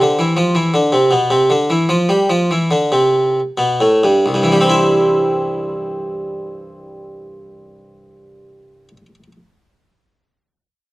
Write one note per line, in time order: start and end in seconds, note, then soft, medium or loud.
0.00 0.18 D3 soft
0.00 4.21 G4 soft
0.00 3.80 C5 medium
0.19 0.36 E3 soft
0.37 0.54 F3 soft
0.55 0.73 E3 soft
0.74 0.91 D3 soft
0.92 1.10 C3 soft
1.11 1.29 B2 soft
1.30 1.49 C3 soft
1.50 1.68 D3 soft
1.70 1.88 E3 soft
1.89 2.08 F3 soft
2.09 2.28 G3 soft
2.30 2.49 F3 soft
2.51 2.70 E3 soft
2.71 2.91 D3 soft
2.92 3.39 C3 soft
3.58 3.79 B2 soft
3.80 4.02 A2 soft
4.04 4.24 G2 soft
4.26 8.88 C2 soft
4.34 8.97 G2 soft
4.43 9.06 E3 soft
4.52 9.15 G3 soft
4.61 9.23 C4 soft
4.69 9.32 E4 soft